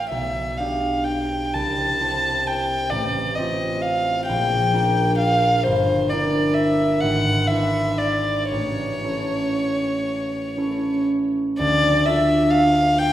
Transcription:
Already playing: harp A1 E4 A4 C#5
0.10 harp B1, violin E5
0.58 harp D4 G4 D5, violin F5
1.05 violin G5
1.54 harp C2, violin A5
2.00 harp E4 G4 C5
2.47 violin G5
2.90 harp A1, violin D5
3.36 harp C4 F4 C5, violin D#5
3.82 violin F5
4.26 harp A#1, violin G5
4.73 harp D4 F4 A#4
5.18 violin F5
5.64 harp G1, violin C5
6.10 harp D4 E4 A#4, violin D5
6.54 violin E5
7.01 harp G#1, violin F#5
7.48 harp D4 E4 B4, violin E5
7.98 violin D5
8.50 harp A1, violin C#5
9.04 harp C#4 E4 A4
10.57 harp C#4 E4 A4
11.59 harp D2, violin D5
12.06 harp D4 F4 A4, violin E5
12.50 violin F5
12.98 violin G5

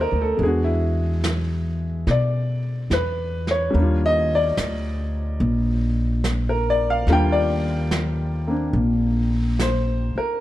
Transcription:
Already playing: upright piano G#3 C4 D4 D#4 F4 G4 C5 D5 D#5 F5 G5
0.01 upright piano A#4
0.12 upright bass D2
0.22 upright piano A4
0.37 upright bass E2, upright piano G#3 B3, brush sweep
0.43 upright piano D4 G#4
0.47 upright piano F#4
0.64 upright piano E4
1.24 snare, hi-hat pedal
2.07 upright bass B2, upright piano D5, brush sweep, snare
2.90 upright bass E2, upright piano B4, snare, hi-hat pedal
3.47 upright piano C#5, snare
3.70 upright bass D#2, upright piano G3 A#3, brush sweep
3.78 upright piano D4 F4
4.06 upright piano D#5
4.35 upright piano D5
4.57 upright bass D2, snare, hi-hat pedal
5.40 upright bass A#1, brush sweep
6.24 snare, hi-hat pedal
6.49 upright piano A#4
6.70 upright piano D5
6.90 upright piano F5
7.07 upright bass D#2, upright piano G3 A#3 D4 F4, brush sweep, snare
7.13 upright piano G5
7.32 upright piano D5
7.91 snare, hi-hat pedal
8.47 upright piano A#3 C4 D4
8.73 upright bass A#1, brush sweep
9.59 upright piano C5, snare, hi-hat pedal
10.15 upright piano A#4, muted upright bass stroke

